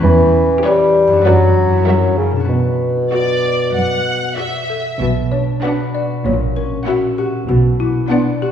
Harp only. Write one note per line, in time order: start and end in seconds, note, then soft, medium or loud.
0.00 1.19 E2 soft
0.00 1.21 C#4 soft
0.00 1.23 G4 soft
0.00 1.20 B4 soft
1.07 1.67 F#2 soft
1.12 1.82 D4 soft
1.17 1.76 F#4 soft
1.21 1.87 B4 soft
1.68 2.42 F#2 soft
1.73 2.45 E4 soft
1.77 2.39 F#4 soft
1.82 2.49 A#4 soft
2.31 4.95 B2 soft
2.35 5.31 D4 soft
2.40 5.93 F#4 soft
2.44 5.62 B4 soft
5.01 6.28 B2 soft
5.32 6.28 D4 soft
5.63 6.28 B4 soft
5.94 7.17 F#4 soft
6.25 7.52 A#2 soft
6.56 7.51 C#4 soft
6.87 7.51 E5 soft
7.18 8.41 F#4 soft
7.49 8.52 B2 soft
7.80 8.52 B3 soft
8.11 8.52 D5 soft
8.42 8.52 F#4 soft